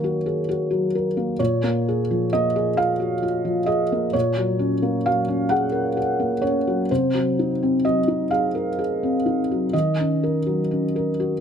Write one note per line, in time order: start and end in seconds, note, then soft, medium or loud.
0.00 1.36 D#3 soft
0.00 0.71 F#3 soft
0.00 1.17 A#3 soft
0.00 0.39 F#4 soft
0.00 0.95 A#4 soft
0.00 0.47 C#5 medium
0.26 0.48 G#4 soft
0.49 0.85 F#4 soft
0.71 1.07 F#3 soft
0.95 1.31 A#4 soft
1.17 1.40 A#3 soft
1.39 4.11 A#2 soft
1.39 2.31 C#5 medium
1.63 2.00 A#3 soft
1.88 2.24 G#4 soft
2.11 2.46 F3 soft
2.33 2.69 A#3 soft
2.33 2.78 D#5 medium
2.56 2.91 G#4 soft
2.77 3.14 F4 soft
2.77 3.69 F5 medium
3.00 3.22 F#4 soft
3.23 3.59 F4 soft
3.45 3.82 F3 soft
3.66 4.05 G#4 soft
3.66 4.13 D#5 medium
3.92 4.15 A#3 soft
4.13 6.86 A#2 soft
4.13 5.06 C#5 medium
4.37 4.74 F#3 soft
4.59 4.96 C#4 soft
4.82 5.19 A#3 soft
5.06 5.43 F#3 soft
5.06 5.52 F5 medium
5.28 5.65 C#4 soft
5.49 5.88 G#4 soft
5.49 6.42 F#5 medium
5.72 5.96 A#4 soft
5.97 6.34 G#4 soft
6.19 6.57 A#3 soft
6.42 6.80 C#4 soft
6.42 6.89 C#5 medium
6.67 6.90 F#3 soft
6.91 9.70 C3 soft
6.91 7.84 C5 medium
7.14 7.51 F#3 soft
7.39 7.75 D#4 soft
7.63 7.99 C4 soft
7.85 8.22 F#3 soft
7.85 8.31 D#5 medium
8.08 8.45 D#4 soft
8.31 8.69 G#4 soft
8.31 9.73 F5 medium
8.55 8.78 A#4 soft
8.79 9.16 G#4 soft
9.03 9.40 C4 soft
9.26 9.64 D#4 soft
9.51 9.74 F#3 soft
9.73 11.40 D#3 soft
9.73 11.40 D#5 medium
10.00 10.37 C#4 soft
10.23 10.61 A#4 soft
10.46 10.84 F#3 soft
10.71 11.09 C#4 soft
10.96 11.33 A#4 soft
11.20 11.40 F#4 soft